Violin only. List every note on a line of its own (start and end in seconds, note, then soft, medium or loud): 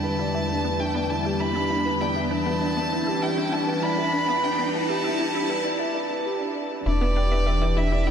0.00 0.81 A5 loud
0.80 1.11 G5 medium
1.10 1.42 A5 medium
1.40 2.02 B5 loud
2.01 2.33 G5 medium
2.31 3.24 A5 loud
3.22 3.54 G5 medium
3.53 3.84 A5 medium
3.83 4.45 B5 loud
4.43 4.75 G5 loud
4.74 5.65 A5 loud
6.86 7.79 D5 loud
7.77 8.09 E5 medium
8.07 8.11 G5 loud